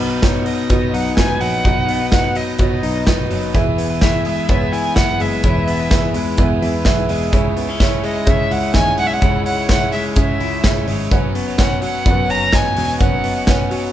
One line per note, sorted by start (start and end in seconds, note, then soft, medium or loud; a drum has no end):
0.00 0.66 B1 medium
0.00 1.65 B2 medium
0.00 0.46 F#3 medium
0.00 0.11 B3 medium
0.00 0.70 B3 medium
0.00 0.12 D#4 medium
0.00 0.22 D#4 medium
0.00 0.11 F#4 medium
0.00 0.23 F#4 medium
0.00 0.23 B4 medium
0.00 1.18 D#5 medium
0.10 0.46 B3 soft
0.10 0.47 D#4 soft
0.10 0.47 F#4 soft
0.10 0.46 B4 medium
0.22 0.93 D#4 medium
0.22 0.57 F#4 medium
0.22 0.57 B4 medium
0.22 0.47 C#5 medium
0.22 0.57 F#5 medium
0.22 kick loud
0.22 snare loud
0.22 closed hi-hat medium
0.46 0.69 B2 medium
0.46 1.40 F#3 medium
0.46 0.70 F#3 medium
0.46 0.70 B3 medium
0.46 0.71 D#4 medium
0.46 0.71 F#4 medium
0.46 0.72 B4 medium
0.46 0.95 D#5 medium
0.46 open hi-hat medium
0.69 0.90 B2 loud
0.69 1.16 B2 medium
0.69 1.17 F#3 medium
0.69 1.18 B3 medium
0.69 1.18 D#4 medium
0.69 1.04 F#4 medium
0.69 1.18 F#4 medium
0.69 1.04 B4 medium
0.69 1.20 B4 medium
0.69 1.04 F#5 medium
0.69 kick loud
0.69 closed hi-hat medium
0.93 1.14 B1 medium
0.93 1.65 D#4 medium
0.93 1.16 F#5 medium
0.93 open hi-hat medium
1.17 1.38 C#2 medium
1.17 1.41 B2 medium
1.17 1.42 F#3 medium
1.17 1.89 B3 medium
1.17 1.40 B3 medium
1.17 1.41 D#4 medium
1.17 1.52 F#4 medium
1.17 1.42 F#4 medium
1.17 1.52 B4 medium
1.17 1.43 B4 medium
1.17 1.52 D#5 medium
1.17 1.42 G#5 loud
1.17 kick medium
1.17 snare loud
1.17 closed hi-hat medium
1.41 1.61 A#1 medium
1.41 2.35 F#3 medium
1.41 1.63 B3 medium
1.41 1.65 D#4 medium
1.41 1.66 F#4 medium
1.41 1.66 B4 medium
1.41 2.11 F#5 loud
1.41 open hi-hat medium
1.65 2.56 B1 loud
1.65 3.54 B2 medium
1.65 2.00 B3 medium
1.65 2.01 D#4 medium
1.65 2.12 D#4 medium
1.65 1.99 F#4 medium
1.65 2.01 F#4 medium
1.65 1.99 B4 medium
1.65 1.99 D#5 medium
1.65 kick loud
1.65 closed hi-hat medium
1.88 2.59 B3 medium
1.88 open hi-hat medium
2.00 2.36 B3 soft
2.00 2.35 D#4 soft
2.00 2.36 F#4 medium
2.00 2.36 B4 medium
2.12 2.82 D#4 medium
2.12 2.46 F#4 medium
2.12 2.46 B4 medium
2.12 2.38 F#5 loud
2.12 2.46 F#5 medium
2.12 kick loud
2.12 snare loud
2.12 closed hi-hat medium
2.35 2.59 B2 medium
2.35 3.29 F#3 medium
2.35 2.59 F#3 medium
2.35 2.59 B3 medium
2.35 2.59 D#4 medium
2.35 2.60 F#4 medium
2.35 2.61 B4 medium
2.35 2.60 D#5 medium
2.35 open hi-hat medium
2.59 2.80 B2 loud
2.59 3.05 B2 medium
2.59 3.06 F#3 medium
2.59 3.06 B3 medium
2.59 3.07 B3 medium
2.59 3.06 D#4 medium
2.59 2.94 F#4 medium
2.59 3.07 F#4 medium
2.59 2.94 B4 medium
2.59 3.08 B4 medium
2.59 2.94 C#5 medium
2.59 3.27 D#5 medium
2.59 kick loud
2.59 closed hi-hat medium
2.83 3.03 B1 medium
2.83 3.54 D#4 medium
2.83 open hi-hat medium
3.06 3.27 B1 medium
3.06 3.30 B2 medium
3.06 3.31 F#3 medium
3.06 3.78 B3 medium
3.06 3.28 B3 medium
3.06 3.30 D#4 medium
3.06 3.41 F#4 medium
3.06 3.31 F#4 medium
3.06 3.41 B4 medium
3.06 3.32 B4 medium
3.06 3.41 D#5 medium
3.06 kick loud
3.06 snare loud
3.06 closed hi-hat medium
3.30 3.51 F#1 medium
3.30 3.59 F#3 medium
3.30 3.53 B3 medium
3.30 3.55 D#4 medium
3.30 3.55 F#4 medium
3.30 3.56 B4 medium
3.30 open hi-hat medium
3.54 4.49 E1 medium
3.54 5.44 E3 medium
3.54 3.90 B3 medium
3.54 4.01 E4 medium
3.54 3.90 E4 medium
3.54 3.88 G#4 medium
3.54 3.90 G#4 medium
3.54 3.88 B4 medium
3.54 3.89 B4 medium
3.54 3.89 E5 medium
3.54 kick loud
3.54 closed hi-hat medium
3.78 4.48 B3 medium
3.78 open hi-hat medium
3.90 4.25 E4 soft
3.90 4.25 G#4 soft
3.90 4.25 B4 medium
4.01 4.72 E4 medium
4.01 4.36 G#4 medium
4.01 4.36 B4 medium
4.01 4.24 E5 medium
4.01 4.36 E5 medium
4.01 kick loud
4.01 snare loud
4.01 closed hi-hat medium
4.25 4.48 E3 medium
4.25 5.20 G#3 medium
4.25 4.49 B3 medium
4.25 4.49 E4 medium
4.25 4.50 G#4 medium
4.25 4.50 B4 medium
4.25 4.74 E5 medium
4.25 open hi-hat medium
4.49 4.73 E2 loud
4.49 4.96 E3 medium
4.49 4.95 B3 medium
4.49 4.96 B3 medium
4.49 4.98 E4 medium
4.49 4.83 G#4 medium
4.49 4.98 G#4 medium
4.49 4.83 B4 medium
4.49 4.98 B4 medium
4.49 4.83 C#5 medium
4.49 kick loud
4.49 closed hi-hat medium
4.72 4.93 E1 medium
4.72 5.44 E4 medium
4.72 4.96 G#5 loud
4.72 open hi-hat medium
4.96 5.17 F#1 medium
4.96 5.20 E3 medium
4.96 5.66 B3 medium
4.96 5.20 B3 medium
4.96 5.21 E4 medium
4.96 5.30 G#4 medium
4.96 5.21 G#4 medium
4.96 5.30 B4 medium
4.96 5.21 B4 medium
4.96 5.31 E5 medium
4.96 5.22 F#5 loud
4.96 kick loud
4.96 snare loud
4.96 closed hi-hat medium
5.20 5.40 F#1 medium
5.20 6.15 G#3 medium
5.20 5.44 B3 medium
5.20 5.45 E4 medium
5.20 5.45 G#4 medium
5.20 5.46 B4 medium
5.20 6.39 E5 medium
5.20 open hi-hat medium
5.43 6.11 E1 loud
5.43 7.33 E3 medium
5.43 5.80 B3 medium
5.43 5.91 E4 medium
5.43 5.81 E4 medium
5.43 5.77 G#4 medium
5.43 5.81 G#4 medium
5.43 5.78 B4 medium
5.43 5.78 C#5 medium
5.43 kick loud
5.43 closed hi-hat medium
5.48 5.79 B4 medium
5.67 6.38 B3 medium
5.67 open hi-hat medium
5.80 6.15 E4 medium
5.80 6.15 G#4 medium
5.80 6.15 B4 medium
5.91 6.62 E4 medium
5.91 6.25 G#4 medium
5.91 6.25 B4 medium
5.91 6.25 E5 medium
5.91 kick loud
5.91 snare loud
5.91 closed hi-hat medium
6.14 6.35 E2 medium
6.14 6.36 E3 medium
6.14 7.09 G#3 medium
6.14 6.37 B3 medium
6.14 6.38 E4 medium
6.14 6.38 G#4 loud
6.14 6.39 B4 loud
6.14 open hi-hat medium
6.37 6.59 E2 loud
6.37 6.84 E3 medium
6.37 6.84 B3 medium
6.37 6.85 B3 medium
6.37 6.86 E4 medium
6.37 6.72 G#4 medium
6.37 6.86 G#4 medium
6.37 6.72 B4 medium
6.37 6.86 B4 medium
6.37 6.72 E5 medium
6.37 kick loud
6.37 closed hi-hat medium
6.62 6.82 E2 medium
6.62 7.34 E4 medium
6.62 open hi-hat medium
6.85 7.06 B1 medium
6.85 7.09 E3 medium
6.85 7.08 B3 medium
6.85 7.38 B3 medium
6.85 7.09 E4 medium
6.85 7.20 G#4 medium
6.85 7.10 G#4 medium
6.85 7.20 B4 medium
6.85 7.10 B4 medium
6.85 7.20 E5 loud
6.85 kick loud
6.85 snare loud
6.85 closed hi-hat medium
7.09 7.29 E1 medium
7.09 8.03 G#3 medium
7.09 7.31 B3 medium
7.09 7.31 E4 medium
7.09 7.33 G#4 medium
7.09 7.34 B4 medium
7.09 open hi-hat medium
7.32 8.24 C#2 medium
7.32 9.20 C#3 medium
7.32 7.68 G#3 medium
7.32 7.68 E4 medium
7.32 7.79 E4 medium
7.32 7.66 G#4 medium
7.32 7.68 G#4 medium
7.32 7.66 C#5 medium
7.32 7.66 E5 medium
7.32 kick loud
7.32 closed hi-hat medium
7.57 7.69 B3 medium
7.57 open hi-hat medium
7.67 8.26 C#4 soft
7.67 8.04 E4 soft
7.67 8.04 G#4 soft
7.67 8.03 C#5 medium
7.80 8.49 E4 medium
7.80 8.14 G#4 medium
7.80 8.14 C#5 medium
7.80 8.06 C#5 medium
7.80 8.14 E5 medium
7.80 kick loud
7.80 snare loud
7.80 closed hi-hat medium
8.04 8.25 C#3 medium
8.04 8.97 G#3 medium
8.04 8.26 G#3 medium
8.04 8.27 E4 medium
8.04 8.27 G#4 medium
8.04 8.27 C#5 medium
8.04 8.31 D#5 medium
8.04 open hi-hat medium
8.26 8.73 C#3 medium
8.26 8.47 C#3 loud
8.26 8.74 G#3 medium
8.26 8.74 C#4 medium
8.26 8.75 E4 medium
8.26 8.61 G#4 medium
8.26 8.75 G#4 medium
8.26 8.61 C#5 medium
8.26 8.76 C#5 medium
8.26 8.61 E5 medium
8.26 8.53 E5 loud
8.26 kick loud
8.26 closed hi-hat medium
8.51 8.71 C#2 medium
8.51 9.20 E4 medium
8.51 8.75 F#5 medium
8.51 open hi-hat medium
8.74 8.98 D#2 medium
8.74 8.98 C#3 medium
8.74 8.97 G#3 medium
8.74 9.45 C#4 medium
8.74 8.98 E4 medium
8.74 9.09 G#4 medium
8.74 8.99 G#4 medium
8.74 9.09 C#5 medium
8.74 8.99 C#5 medium
8.74 9.09 D#5 medium
8.74 8.97 G#5 loud
8.74 kick loud
8.74 snare loud
8.74 closed hi-hat medium
8.98 9.19 B1 medium
8.98 9.92 G#3 medium
8.98 9.21 G#3 medium
8.98 9.22 E4 medium
8.98 9.23 G#4 medium
8.98 9.23 C#5 medium
8.98 9.08 F#5 loud
8.98 open hi-hat medium
9.06 9.15 E5 medium
9.13 9.46 F#5 loud
9.21 10.13 C#2 loud
9.21 11.11 C#3 medium
9.21 9.58 G#3 medium
9.21 9.68 E4 medium
9.21 9.58 E4 medium
9.21 9.56 G#4 medium
9.21 9.58 G#4 medium
9.21 9.56 C#5 medium
9.21 9.56 E5 medium
9.21 kick loud
9.21 closed hi-hat medium
9.25 9.56 C#5 medium
9.46 10.16 C#4 medium
9.46 9.68 F#5 medium
9.46 open hi-hat medium
9.57 9.94 E4 soft
9.57 9.94 G#4 medium
9.57 9.93 C#5 medium
9.69 10.40 E4 medium
9.69 10.03 G#4 medium
9.69 10.03 C#5 medium
9.69 9.91 F#5 loud
9.69 10.03 F#5 medium
9.69 kick loud
9.69 snare loud
9.69 closed hi-hat medium
9.92 10.16 C#3 medium
9.92 10.86 G#3 medium
9.92 10.17 G#3 medium
9.92 10.17 E4 medium
9.92 10.17 G#4 medium
9.92 10.18 C#5 medium
9.92 10.03 E5 medium
9.92 open hi-hat medium
10.16 10.37 C#3 loud
10.16 10.63 C#3 medium
10.16 10.63 G#3 medium
10.16 10.63 C#4 medium
10.16 10.64 E4 medium
10.16 10.51 G#4 medium
10.16 10.64 G#4 medium
10.16 10.51 C#5 medium
10.16 10.66 C#5 medium
10.16 10.84 E5 medium
10.16 10.51 E5 medium
10.16 kick loud
10.16 closed hi-hat medium
10.40 10.60 C#2 medium
10.40 11.12 E4 medium
10.40 open hi-hat medium
10.64 10.84 C#2 medium
10.64 10.88 C#3 medium
10.64 10.87 G#3 medium
10.64 11.12 C#4 medium
10.64 10.88 E4 medium
10.64 10.98 G#4 medium
10.64 10.89 G#4 medium
10.64 10.98 C#5 medium
10.64 10.89 C#5 medium
10.64 10.98 E5 medium
10.64 kick loud
10.64 snare loud
10.64 closed hi-hat medium
10.86 11.07 G#1 medium
10.86 11.16 G#3 medium
10.86 11.11 G#3 medium
10.86 11.12 E4 medium
10.86 11.13 G#4 medium
10.86 open hi-hat medium
10.91 11.13 C#5 medium
11.11 12.07 F#1 loud
11.11 12.99 F#2 medium
11.11 11.47 F#3 medium
11.11 11.48 B3 medium
11.11 11.57 C#4 medium
11.11 11.48 F#4 medium
11.11 11.45 B4 medium
11.11 11.45 C#5 medium
11.11 11.46 C#5 medium
11.11 11.45 F#5 loud
11.11 kick loud
11.11 closed hi-hat medium
11.35 12.05 B3 medium
11.35 open hi-hat medium
11.48 11.82 B3 soft
11.48 11.83 F#4 soft
11.48 11.83 C#5 medium
11.58 12.29 C#4 medium
11.58 11.93 B4 medium
11.58 11.93 C#5 medium
11.58 11.81 F#5 medium
11.58 11.93 F#5 medium
11.58 kick loud
11.58 snare loud
11.58 closed hi-hat medium
11.82 12.77 F#3 medium
11.82 12.05 F#3 medium
11.82 12.06 B3 medium
11.82 12.06 F#4 medium
11.82 12.07 C#5 medium
11.82 12.31 F#5 loud
11.82 open hi-hat medium
12.06 12.26 F#2 loud
12.06 12.52 F#3 medium
12.06 12.53 B3 medium
12.06 12.54 F#4 medium
12.06 12.40 B4 medium
12.06 12.40 C#5 medium
12.06 12.54 C#5 medium
12.06 12.40 F#5 medium
12.06 kick loud
12.06 closed hi-hat medium
12.29 12.53 F#1 medium
12.29 13.00 C#4 medium
12.29 12.56 A#5 loud
12.29 open hi-hat medium
12.52 12.73 G#1 medium
12.52 12.75 F#3 medium
12.52 12.76 B3 medium
12.52 13.23 B3 medium
12.52 12.77 F#4 medium
12.52 12.87 B4 medium
12.52 12.87 C#5 medium
12.52 12.78 C#5 medium
12.52 12.87 D#5 medium
12.52 13.00 G#5 loud
12.52 kick loud
12.52 snare loud
12.52 closed hi-hat medium
12.76 12.97 E1 medium
12.76 12.98 F#3 medium
12.76 13.71 F#3 medium
12.76 12.99 B3 medium
12.76 13.00 F#4 medium
12.76 13.01 C#5 medium
12.76 open hi-hat medium
12.99 13.91 F#1 loud
12.99 13.92 F#2 medium
12.99 13.35 F#3 medium
12.99 13.36 B3 medium
12.99 13.47 C#4 medium
12.99 13.35 F#4 medium
12.99 13.34 B4 medium
12.99 13.34 C#5 medium
12.99 13.33 C#5 medium
12.99 13.91 F#5 medium
12.99 13.34 F#5 medium
12.99 kick loud
12.99 closed hi-hat medium
13.24 13.92 B3 medium
13.24 open hi-hat medium
13.34 13.70 B3 soft
13.34 13.71 F#4 medium
13.34 13.71 C#5 medium
13.47 13.92 C#4 medium
13.47 13.81 B4 medium
13.47 13.81 C#5 medium
13.47 13.81 G#5 medium
13.47 kick loud
13.47 snare loud
13.47 closed hi-hat medium
13.70 13.92 F#3 medium
13.70 13.92 B3 loud
13.70 13.92 F#4 loud
13.70 13.92 C#5 loud
13.70 open hi-hat medium